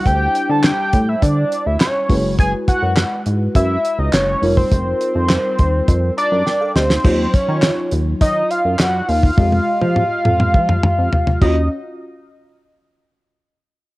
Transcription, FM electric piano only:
\new Staff \with { instrumentName = "FM electric piano" } { \time 4/4 \key f \phrygian \tempo 4 = 103 << { r1 | r1 | r2 r8 bes''8 <bes' g''>16 <a' f''>16 <g' ees''>16 <ees' c''>16~ | <ees' c''>16 r2. r8. |
r1 | r1 | } \\ { <g d' e' c''>2.~ <g d' e' c''>8 <aes fes' ges' ces''>8~ | <aes fes' ges' ces''>2.~ <aes fes' ges' ces''>8 <g ees' f' bes'>8~ | <g ees' f' bes'>2.~ <g ees' f' bes'>8 r8 | <ges ees' f' des''>1 |
<aes f' g' ees''>2.~ <aes f' g' ees''>8 <des' f' ges' ees''>8 | r1 | } >> }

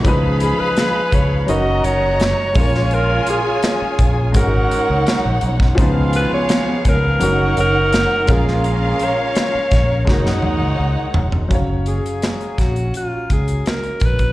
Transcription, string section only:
\new Staff \with { instrumentName = "String section" } { \time 4/4 \key fis \major \tempo 4 = 84 <gis' eis'' b''>2 <fis' dis'' ais''>4. <eis' cis'' gis''>8~ | <eis' cis'' gis''>2 <dis' cis'' fis''>2 | <b gis' eis''>2 <dis' cis'' fis''>4. <cis' ais' eis''>8~ | <cis' ais' eis''>2 <dis' cis'' fis''>2 |
r1 | }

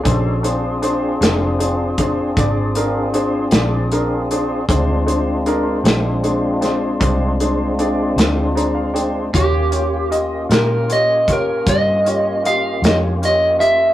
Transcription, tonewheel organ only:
\new Staff \with { instrumentName = "Tonewheel organ" } { \time 12/8 \key bes \mixolydian \tempo 4. = 52 <des' ees' ges' a'>8 <c' d' f' aes'>1~ <c' d' f' aes'>4. | <aes c' d' f'>1. | <bes des' f' g'>1. | }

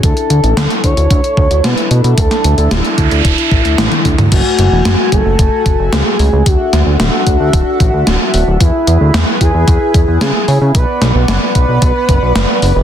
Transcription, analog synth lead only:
\new Staff \with { instrumentName = "Analog synth lead" } { \time 4/4 \key d \lydian \tempo 4 = 112 a'4. cis''4. b'4 | a'4 e'2. | fis'4. a'4. gis'4 | fis'4 fis'2. |
e'4. gis'4. gis'4 | b'4 b'2. | }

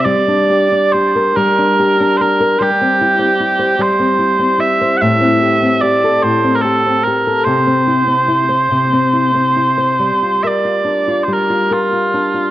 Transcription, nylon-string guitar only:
\new Staff \with { instrumentName = "Nylon-string guitar" } { \time 6/8 \key g \dorian \tempo 4. = 48 g16 d'16 g'16 d'16 g'16 bes'16 g16 d'16 g'16 d'16 g'16 bes'16 | g16 c'16 e'16 c'16 e'16 c''16 g16 c'16 e'16 c'16 e'16 c''16 | a,16 c'16 g'16 c'16 g'16 a'16 a,16 c'16 g'16 c'16 g'16 a'16 | c16 c'16 e'16 c'16 e'16 c''16 c16 c'16 e'16 c'16 e'16 c''16 |
g16 f'16 bes'16 f'16 d'16 f'16 g16 f'16 bes'16 f'16 d'16 f'16 | }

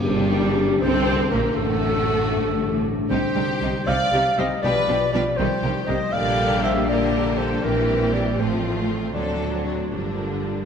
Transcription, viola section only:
\new Staff \with { instrumentName = "Viola section" } { \clef bass \time 6/8 \key c \dorian \tempo 4. = 79 << { g4. c'4 bes8 | a2~ a8 r8 | g8 g8 g8 g8 g8 g8 | g8 g8 g8 g8 g8 g8 |
\key g \dorian g4. g4. | g4. a4. | a8. fis8. f4. | } \\ { r2. | r2. | g8 g8 g8 g8 g8 g8 | f8 f8 f8 ees8 ees8 ees8 |
d4. d4. | e4. f4. | fis4. d4. | } >> }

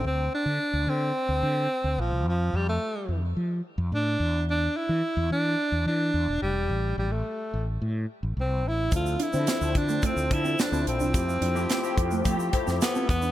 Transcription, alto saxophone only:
\new Staff \with { instrumentName = "Alto saxophone" } { \time 4/4 \key d \minor \tempo 4 = 108 c'8 d'4 c'2 f8 | f8 g16 a4 r4 r16 d'4 | d'8 e'4 d'4 d'4 g8~ | g8 g16 a4 r4 r16 c'8 e'8 |
f'8 e'4 d'8 c'8 e'8 d'8 c'8~ | c'2~ c'8 r8 b8 b8 | }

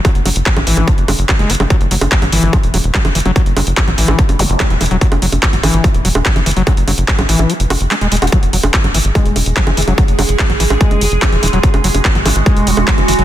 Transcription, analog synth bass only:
\new Staff \with { instrumentName = "Analog synth bass" } { \clef bass \time 4/4 \key fis \minor \tempo 4 = 145 r16 fis,,16 fis,,16 fis,,16 r16 a,,16 a,,16 a,,16 r16 fis,,16 fis,,16 fis,,16 r16 fis,,16 fis,,16 fis,,16 | r16 fis,,16 fis,,16 fis,,16 r16 gis,,16 gis,,16 gis,,16 r16 e,,16 e,,16 e,,16 r16 fis,,16 fis,,16 fis,,16 | r16 fis,,16 fis,,16 fis,,16 r16 a,,16 a,,16 a,,16 r16 fis,,16 fis,,16 fis,,16 r16 e,,16 e,,16 e,,16 | r16 fis,,16 fis,,16 fis,,16 r16 gis,,16 gis,,16 gis,,16 r16 e,,16 e,,16 e,,16 r16 fis,,16 fis,,16 fis,,16 |
r16 fis,,16 fis,,16 fis,,16 r16 a,,16 a,,16 a,,16 r16 fis,,16 fis,,16 fis,,16 r16 e,,16 e,,16 e,,16 | r16 fis,,16 fis,,16 fis,,16 r16 gis,,16 gis,,16 gis,,16 r16 e,,16 e,,16 e,,16 r16 fis,,16 fis,,16 fis,,16 | r16 fis,,16 fis,,16 fis,,16 r16 a,,16 a,,16 a,,16 r16 fis,,16 fis,,16 fis,,16 r16 e,,16 e,,16 e,,16 | r16 fis,,16 fis,,16 fis,,16 r16 gis,,16 gis,,16 gis,,16 r16 e,,16 e,,16 e,,16 r16 fis,,16 fis,,16 fis,,16 | }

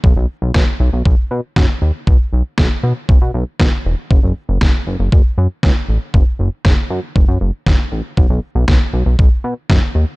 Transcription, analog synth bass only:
\new Staff \with { instrumentName = "Analog synth bass" } { \clef bass \time 4/4 \key b \mixolydian \tempo 4 = 118 b,,16 b,,16 r16 b,,16 b,,16 r16 b,,16 b,,16 b,,16 r16 b,16 r16 fis,16 r16 dis,16 r16 | b,,16 r16 b,,16 r16 b,,16 r16 b,16 r16 b,,16 b,16 b,,16 r16 b,,16 r16 e,,16 r16 | fis,,16 fis,,16 r16 fis,,16 fis,,16 r16 fis,,16 fis,,16 fis,,16 r16 fis,16 r16 cis,16 r16 a,,16 r16 | fis,,16 r16 fis,,16 r16 fis,,16 r16 fis,16 r16 fis,,16 fis,16 fis,,16 r16 fis,,16 r16 a,,16 r16 |
b,,16 b,,16 r16 b,,16 b,,16 r16 b,,16 b,,16 b,,16 r16 b,16 r16 fis,16 r16 dis,16 r16 | }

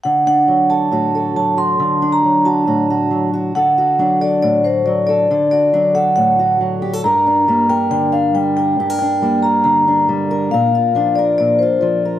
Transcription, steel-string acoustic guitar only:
\new Staff \with { instrumentName = "Steel-string acoustic guitar" } { \time 4/4 \key d \phrygian \tempo 4 = 137 << { r8 d'4 a'8 fis'8 a'4 fis'8 | r8 d'4 fis'8 fis'8 fis'4 fis'8 | a'8 fis'8 d'8 a'4 fis'4 a'8 | a'8 fis'8 d'8 a'4 fis'4 g'16 a'16 |
bes'8 d'8 bes8 bes'4 d'4 bes'8 | g'16 bes'16 d'8 bes8 bes'4 d'4 bes'8 | bes'8 f'8 d'8 bes'4 f'4 bes'8 | } \\ { d4 fis4 a,4 fis4 | d4 fis4 a,4 fis4 | d4 fis4 a,4 fis4 | d4 fis4 a,4 fis4 |
g,4 g4 d4 g4 | g,4 g4 d4 g4 | bes,4 f4 bes,4 f4 | } >> }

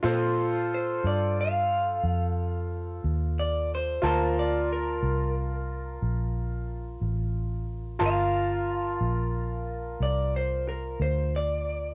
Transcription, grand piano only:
\new Staff \with { instrumentName = "Grand piano" } { \time 12/8 \key g \minor \tempo 4. = 60 <f' a' c''>1. | <f' bes' a''>1. | <f' bes' a''>1. | }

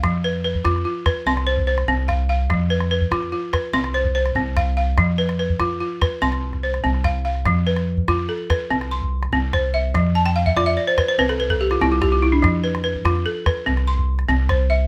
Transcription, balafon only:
\new Staff \with { instrumentName = "Balafon" } { \time 12/8 \key f \lydian \tempo 4. = 97 << { f''8 b'8 b'4 f'8 b'8 c'''8 c''8 c''4 f''8 f''8~ | f''8 b'8 b'4 f'8 b'8 c'''8 c''8 c''4 f''8 f''8~ | f''8 b'8 b'4 f'8 b'8 c'''4 c''4 f''8 f''8~ | f''8 b'4. a'8 b'4 c'''4. c''8 e''8~ |
e''8 a''16 g''16 f''16 e''16 d''16 e''16 d''16 c''16 b'16 c''16 b'16 a'16 b'16 a'16 g'16 f'16 e'16 f'16 g'16 f'16 e'16 d'16~ | d'16 r16 b'8 b'4 a'8 b'4 c'''4. c''8 e''8 | } \\ { f4 r8 f'4 r8 c'4 r8 c'4 r8 | f4 r8 f'4 r8 c'4 r8 c'4 r8 | f4 r8 f'4 r8 c'4 r8 c'4 r8 | f4 r8 f'4 r8 c'4 r8 c'4 r8 |
f4 r8 f'4 r8 c'4 r8 c'4 r8 | f4 r8 f'4 r8 c'4 r8 c'4 r8 | } >> }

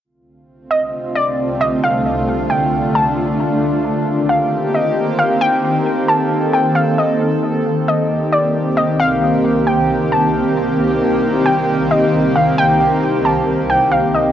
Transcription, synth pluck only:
\new Staff \with { instrumentName = "Synth pluck" } { \time 4/4 \key d \phrygian \tempo 4 = 134 r4. ees''4 d''4 ees''8 | f''4. g''4 a''4. | r4. f''4 ees''4 f''8 | g''4. a''4 g''8 f''8 ees''8 |
r4. ees''4 d''4 ees''8 | f''4. g''4 a''4. | r4. g''4 ees''4 f''8 | g''4. a''4 g''8 f''8 ees''8 | }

